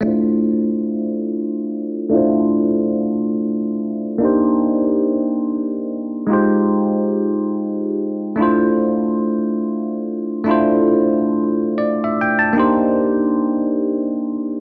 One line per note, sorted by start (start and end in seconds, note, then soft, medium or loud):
0.01 2.07 A3 medium
0.01 2.08 D4 medium
0.01 2.08 E4 medium
0.06 2.09 F4 medium
0.06 2.10 C5 medium
2.09 4.15 A3 medium
2.09 4.16 D4 medium
2.09 4.17 E4 medium
2.14 4.18 F4 medium
2.14 4.19 C5 medium
4.18 6.24 A#3 medium
4.18 6.25 D4 medium
4.18 6.26 D#4 medium
4.23 6.27 G4 medium
4.23 6.28 C5 medium
6.27 8.33 G#3 medium
6.27 8.34 D#4 medium
6.27 8.35 F4 medium
6.32 8.35 G4 medium
6.32 8.36 C5 medium
8.36 10.42 A3 medium
8.36 10.42 D4 medium
8.36 10.43 E4 medium
8.41 10.44 F4 medium
8.41 10.45 C5 medium
10.44 12.50 A3 medium
10.44 12.51 D4 medium
10.44 12.52 E4 medium
10.49 12.53 F4 medium
10.49 12.54 C5 medium
11.78 12.02 D5 medium
12.04 12.20 E5 medium
12.22 12.37 G5 medium
12.39 12.55 A5 medium
12.53 14.59 A#3 medium
12.53 14.60 D4 medium
12.53 14.60 D#4 medium
12.58 14.60 G4 medium
12.58 14.60 C5 medium